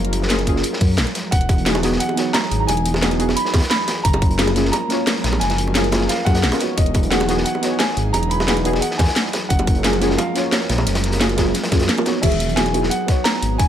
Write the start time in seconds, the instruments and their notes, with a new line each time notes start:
Already playing: detuned saw bass F#1, analog synth pad F3 F#3 G#3 A#4, synth stab A#3 C#4 F4 C#5
0.05 closed hi-hat
0.13 closed hi-hat
0.22 snare
0.29 synth stab A#3 C#4 F4 G#4, snare, closed hi-hat
0.39 closed hi-hat
0.46 synth stab A#3 C#4 F4 G#4, kick, closed hi-hat
0.56 snare
0.63 closed hi-hat
0.73 snare
0.80 detuned saw bass F#2, kick, closed hi-hat, open hi-hat
0.98 detuned saw bass A#1, snare, closed hi-hat
1.07 snare, closed hi-hat
1.15 snare, closed hi-hat
1.31 detuned saw bass E1, analog synth pad E3 D#4 G#4, grand piano F#5, kick, closed hi-hat
1.41 closed hi-hat
1.49 kick, closed hi-hat, high bongo
1.58 closed hi-hat
1.65 synth stab B3 D#4 F#4 G#4, snare, closed hi-hat
1.75 closed hi-hat, high bongo
1.82 synth stab B3 D#4 F#4 G#4, snare, closed hi-hat
1.92 snare
1.99 grand piano F#5, closed hi-hat
2.09 high bongo
2.15 synth stab B3 D#4 F#4, snare, closed hi-hat
2.20 synth stab C#5
2.33 grand piano A#5, snare, closed hi-hat, high bongo
2.43 snare
2.51 detuned saw bass G#1, closed hi-hat
2.60 grand piano A#5
2.67 detuned saw bass E1, grand piano G#5, closed hi-hat, high bongo
2.77 closed hi-hat
2.86 closed hi-hat
2.94 snare, high bongo
3.02 synth stab B3 D#4 F#4 G#4, snare, closed hi-hat
3.11 closed hi-hat
3.19 synth stab B3 D#4 F#4 G#4, closed hi-hat
3.29 snare, high bongo
3.35 grand piano B5, closed hi-hat
3.45 snare
3.54 detuned saw bass E2, kick, snare, closed hi-hat, high bongo
3.58 snare, closed hi-hat
3.62 snare, closed hi-hat
3.69 grand piano B5, snare, closed hi-hat
3.80 snare
3.88 snare, closed hi-hat, high bongo
4.04 detuned saw bass F#1, analog synth pad F3 G#3 A#4, grand piano A#5, kick, closed hi-hat
4.13 closed hi-hat, high bongo
4.22 kick, closed hi-hat
4.31 closed hi-hat
4.38 synth stab A#3 C#4 F4 G#4, snare, closed hi-hat
4.47 closed hi-hat, high bongo
4.55 synth stab A#3 C#4 F4 G#4, snare, closed hi-hat
4.65 snare
4.72 grand piano A#5, closed hi-hat, high bongo
4.88 synth stab A#3 C#4 F4, snare, closed hi-hat
4.93 synth stab C#5
5.07 snare, closed hi-hat, high bongo
5.16 snare
5.24 detuned saw bass A#1, snare, closed hi-hat
5.33 high bongo
5.40 detuned saw bass F#1, grand piano G#5, snare, closed hi-hat
5.50 snare, closed hi-hat
5.58 closed hi-hat
5.67 high bongo
5.74 synth stab A#3 C#4 F4 G#4, snare, closed hi-hat
5.84 closed hi-hat
5.91 synth stab A#3 C#4 F4 G#4, snare, closed hi-hat, high bongo
6.01 snare
6.08 grand piano F5, snare, closed hi-hat
6.18 snare
6.25 detuned saw bass F#2, synth stab A#3 C#4 F4 G#4, grand piano F#5, kick, snare, closed hi-hat, high bongo
6.35 snare, closed hi-hat
6.44 detuned saw bass A#1, snare, closed hi-hat
6.51 synth stab A#3 C#4 F4 A#4, snare, closed hi-hat, high bongo
6.58 synth stab B3 D#4 F#4, snare, closed hi-hat
6.63 synth stab C#5
6.76 detuned saw bass E1, analog synth pad E3 F#3 D#4 G#4, grand piano D#5, kick, closed hi-hat
6.86 closed hi-hat
6.94 kick, closed hi-hat, high bongo
7.03 closed hi-hat
7.10 synth stab B3 D#4 F#4 G#4, grand piano F#5, snare, closed hi-hat
7.20 closed hi-hat, high bongo
7.28 synth stab B3 D#4 F#4 G#4, snare, closed hi-hat
7.38 snare
7.44 grand piano F#5, closed hi-hat
7.55 high bongo
7.61 synth stab B3 D#4 F#4, snare, closed hi-hat
7.65 synth stab C#5
7.79 grand piano G#5, snare, closed hi-hat, high bongo
7.89 snare
7.97 detuned saw bass G#1, closed hi-hat
8.13 detuned saw bass E1, grand piano A#5, closed hi-hat, high bongo
8.23 closed hi-hat
8.30 grand piano B5, closed hi-hat
8.40 snare, high bongo
8.47 synth stab B3 D#4 F#4 G#4, snare, closed hi-hat
8.57 closed hi-hat
8.64 synth stab B3 D#4 F#4 G#4, closed hi-hat
8.73 snare, high bongo
8.81 grand piano F#5, closed hi-hat
8.91 snare
8.98 detuned saw bass E2, grand piano G#5, kick, snare, closed hi-hat, high bongo
9.04 snare, closed hi-hat
9.08 snare, closed hi-hat
9.15 snare, closed hi-hat
9.26 snare
9.33 snare, closed hi-hat, high bongo
9.49 detuned saw bass F#1, analog synth pad F3 G#3 A#4, grand piano F#5, kick, closed hi-hat
9.59 closed hi-hat, high bongo
9.67 kick, closed hi-hat
9.75 closed hi-hat
9.83 synth stab A#3 C#4 F4 G#4, snare, closed hi-hat
9.93 closed hi-hat, high bongo
10.00 synth stab A#3 C#4 F4 G#4, snare, closed hi-hat
10.10 snare
10.17 grand piano F5, closed hi-hat, high bongo
10.33 synth stab A#3 C#4 F4, snare, closed hi-hat
10.38 synth stab C#5
10.51 grand piano C#5, snare, closed hi-hat, high bongo
10.61 snare
10.70 detuned saw bass A#1, snare, closed hi-hat
10.78 snare, high bongo
10.87 detuned saw bass F#1, snare, closed hi-hat
10.95 snare, closed hi-hat
11.04 snare, closed hi-hat
11.12 snare, closed hi-hat, high bongo
11.20 synth stab A#3 C#4 F4 G#4, snare, closed hi-hat
11.29 closed hi-hat
11.37 synth stab A#3 C#4 F4 G#4, kick, snare, closed hi-hat, high bongo
11.54 snare, closed hi-hat
11.64 snare, closed hi-hat
11.71 detuned saw bass F#2, synth stab A#3 C#4 F4 G#4, kick, snare, closed hi-hat, high bongo
11.80 snare, closed hi-hat
11.89 snare, closed hi-hat
11.96 synth stab A#3 C#4 F4 A#4, closed hi-hat, high bongo
12.05 synth stab B3 D#4 F#4 C#5, snare, closed hi-hat
12.22 detuned saw bass E1, synth stab D#3 B3 F#4 G#4, analog synth pad F#3 B3 G#4, grand piano E5, kick, closed hi-hat, crash
12.32 closed hi-hat
12.40 closed hi-hat
12.49 closed hi-hat
12.56 synth stab B3 D#4 F#4 G#4, grand piano G#5, snare, closed hi-hat
12.66 closed hi-hat
12.73 synth stab B3 D#4 F#4 G#4, closed hi-hat
12.83 snare
12.90 grand piano F#5, closed hi-hat
13.06 synth stab B3 D#4 F#4, kick, snare, closed hi-hat
13.11 synth stab C#5
13.24 grand piano A#5, snare, closed hi-hat
13.34 snare
13.42 detuned saw bass G#1, closed hi-hat
13.58 detuned saw bass E1, grand piano G#5, kick, closed hi-hat